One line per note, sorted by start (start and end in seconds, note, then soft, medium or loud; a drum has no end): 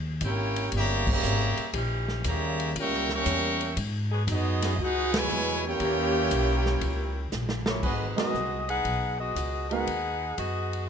0.00 0.20 D#2 medium
0.21 0.71 G#1 medium
0.21 0.69 A#3 medium
0.21 0.70 C#4 medium
0.21 0.70 G4 medium
0.21 kick soft
0.21 hi-hat pedal medium
0.21 ride medium
0.25 0.71 E4 medium
0.25 0.71 A#4 medium
0.25 0.71 C#5 medium
0.25 0.71 G5 loud
0.56 ride medium
0.72 1.21 G1 medium
0.72 1.08 C#3 loud
0.72 1.08 G3 loud
0.72 1.08 A#3 loud
0.72 kick soft
0.72 ride medium
0.76 1.09 G4 loud
0.76 1.09 C#5 loud
0.76 1.09 E5 loud
0.76 1.10 A#5 loud
1.07 1.71 C#3 medium
1.07 1.71 G3 medium
1.07 1.71 A#3 medium
1.07 kick loud
1.07 crash medium
1.12 1.72 G4 loud
1.12 1.72 C#5 medium
1.12 1.72 E5 loud
1.12 1.73 A#5 loud
1.23 1.55 G#1 medium
1.23 hi-hat pedal medium
1.57 muted upright bass stroke soft
1.57 ride medium
1.73 2.23 A#1 medium
1.73 2.53 E3 loud
1.73 2.53 C#4 loud
1.73 2.53 D#4 loud
1.73 2.52 G4 loud
1.73 kick soft
1.73 ride medium
2.08 snare soft
2.24 2.74 D#2 medium
2.24 2.73 C#3 medium
2.24 2.73 G3 medium
2.24 2.73 A#3 medium
2.24 2.73 G4 medium
2.24 2.73 C#5 medium
2.24 2.73 E5 medium
2.24 2.73 A#5 loud
2.24 kick soft
2.24 hi-hat pedal medium
2.24 ride medium
2.60 ride medium
2.75 3.25 C#2 medium
2.75 3.11 G3 loud
2.75 3.11 A#3 loud
2.75 3.12 C#4 loud
2.75 3.12 A#4 loud
2.75 3.12 E5 loud
2.75 3.12 C#6 loud
2.75 kick soft
2.75 ride medium
2.79 3.12 G5 loud
2.93 snare soft
3.09 snare medium
3.14 3.75 G3 medium
3.14 3.75 A#3 medium
3.14 3.75 C#4 medium
3.14 3.75 A#4 loud
3.14 3.75 E5 loud
3.14 3.75 G5 loud
3.14 3.75 C#6 loud
3.26 3.75 E2 medium
3.26 kick soft
3.26 hi-hat pedal medium
3.26 ride medium
3.61 ride medium
3.77 4.26 G#2 loud
3.77 kick soft
3.77 ride medium
4.11 4.22 F#3 loud
4.11 4.22 B3 medium
4.11 4.22 D#4 medium
4.11 4.22 G#4 loud
4.27 4.77 F#2 loud
4.27 4.75 F#3 medium
4.27 4.75 B3 medium
4.27 4.75 D#4 medium
4.27 kick soft
4.27 hi-hat pedal medium
4.27 ride medium
4.31 4.77 B3 medium
4.31 4.77 F#4 medium
4.31 4.77 G#4 medium
4.31 4.77 D#5 loud
4.62 4.75 E3 medium
4.62 4.75 B3 medium
4.62 4.75 C#4 medium
4.62 4.74 G#4 loud
4.62 snare medium
4.62 ride medium
4.79 5.28 C#2 medium
4.79 5.13 F#4 loud
4.79 5.15 F#5 loud
4.79 kick soft
4.83 5.15 D#4 loud
4.83 5.16 G#4 loud
4.83 5.16 B4 medium
5.13 5.64 B2 loud
5.13 5.64 E3 medium
5.13 5.64 G#3 medium
5.13 5.66 E4 loud
5.13 5.66 B4 loud
5.13 snare loud
5.13 ride medium
5.17 5.66 C#5 loud
5.17 5.66 G#5 loud
5.29 5.79 E2 medium
5.29 hi-hat pedal medium
5.65 7.29 A#3 loud
5.65 7.29 C#4 loud
5.65 7.30 E4 medium
5.65 7.29 G4 loud
5.65 7.30 A#4 medium
5.65 7.30 C#5 medium
5.65 7.30 G5 loud
5.80 6.29 D#2 medium
5.80 7.24 D#3 loud
5.80 7.24 E3 loud
5.80 7.24 C#4 loud
5.80 7.24 G4 loud
5.80 kick soft
5.80 ride medium
6.31 6.80 B1 loud
6.31 kick soft
6.31 hi-hat pedal medium
6.31 ride medium
6.66 snare medium
6.81 7.31 C#2 medium
6.81 kick soft
6.81 ride medium
7.32 7.82 A#1 medium
7.32 snare medium
7.32 hi-hat pedal medium
7.49 snare medium
7.66 7.83 A#3 medium
7.66 7.83 E4 medium
7.66 7.83 G4 medium
7.66 7.83 C#5 medium
7.66 snare loud
7.82 8.16 G#1 medium
7.82 8.19 G#3 medium
7.82 8.19 D#4 medium
7.82 8.06 F#4 medium
7.82 8.17 F#4 medium
7.82 8.06 G#4 medium
7.82 8.06 B4 medium
7.82 8.18 B4 medium
7.82 8.06 D#5 medium
7.82 kick medium
7.82 crash medium
8.16 8.32 G#3 medium
8.16 8.32 B3 medium
8.16 8.65 B3 medium
8.16 8.32 D#4 medium
8.16 8.32 F#4 medium
8.16 8.65 F#4 medium
8.16 8.65 G#4 medium
8.16 8.32 A#4 medium
8.16 8.66 D#5 loud
8.16 muted upright bass stroke soft
8.16 snare medium
8.16 ride medium
8.34 8.83 C2 medium
8.34 hi-hat pedal soft
8.68 9.16 D#4 loud
8.68 9.16 G#4 medium
8.68 9.16 B4 medium
8.68 9.16 F#5 loud
8.68 ride soft
8.85 9.34 B1 medium
8.85 kick soft
8.85 ride medium
9.20 9.71 B3 medium
9.20 9.71 F#4 medium
9.20 9.69 G#4 medium
9.20 9.71 D#5 medium
9.35 9.85 C#2 medium
9.35 kick soft
9.35 hi-hat pedal medium
9.35 ride medium
9.70 9.85 G#3 medium
9.70 9.85 B3 medium
9.70 10.33 D#4 medium
9.70 9.86 D#4 medium
9.70 9.86 F#4 medium
9.70 10.34 G#4 medium
9.70 9.86 A#4 medium
9.70 10.34 B4 medium
9.70 10.34 F#5 loud
9.70 ride soft
9.87 10.36 D#2 medium
9.87 kick soft
9.87 ride medium
10.37 10.87 F#2 medium
10.37 10.85 B3 medium
10.37 10.85 F#4 medium
10.37 10.85 G#4 medium
10.37 10.85 D#5 medium
10.37 kick soft
10.37 hi-hat pedal soft
10.37 ride medium
10.73 ride soft